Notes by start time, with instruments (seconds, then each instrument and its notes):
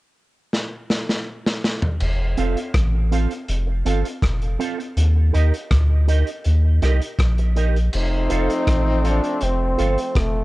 0.53 snare
0.90 snare
1.09 snare
1.46 snare
1.64 snare
1.82 floor tom
2.00 sub bass F1, crash
2.37 sub bass F1, clean electric guitar C4 F4 A4 F5, closed hi-hat
2.57 closed hi-hat
2.74 sub bass A1, kick, cross-stick, closed hi-hat
3.11 clean electric guitar C4 F4 A4 F5, closed hi-hat
3.31 closed hi-hat
3.48 sub bass F1, closed hi-hat
3.67 muted clean electric guitar stroke
3.85 sub bass G1, clean electric guitar C4 F4 A4 F5, closed hi-hat
4.05 closed hi-hat
4.22 sub bass F1, kick, cross-stick, closed hi-hat
4.42 closed hi-hat
4.59 clean electric guitar C4 F4 A4 F5, closed hi-hat
4.79 muted clean electric guitar stroke, closed hi-hat
4.97 sub bass D#2, closed hi-hat
5.33 sub bass D#2, clean electric guitar D#4 G4 A#4 D#5, closed hi-hat
5.54 closed hi-hat
5.71 sub bass D2, kick, cross-stick, closed hi-hat
6.07 clean electric guitar D#4 G4 A#4 D#5, closed hi-hat
6.27 closed hi-hat
6.44 sub bass D#2, closed hi-hat
6.82 sub bass C2, clean electric guitar D#4 G4 A#4 D#5, cross-stick, closed hi-hat
7.01 muted clean electric guitar stroke, closed hi-hat
7.19 sub bass A#1, kick, cross-stick, closed hi-hat
7.38 muted clean electric guitar stroke, closed hi-hat
7.56 clean electric guitar D#4 G4 A#4 D#5, closed hi-hat
7.76 closed hi-hat
7.93 sub bass F1, horn section F3 A3 C4, trombone D#4, crash
8.29 sub bass F1, clean electric guitar F4 A4 C5 F5, closed hi-hat
8.50 closed hi-hat
8.67 sub bass A1, kick, cross-stick, closed hi-hat
9.04 clean electric guitar F4 A4 C5 F5, closed hi-hat
9.08 trombone D4
9.24 muted clean electric guitar stroke, closed hi-hat
9.41 sub bass F1, trombone C4, closed hi-hat
9.78 sub bass G1, clean electric guitar F4 A4 C5 F5, closed hi-hat
9.98 closed hi-hat
10.15 sub bass F1, trombone A3, kick, cross-stick, closed hi-hat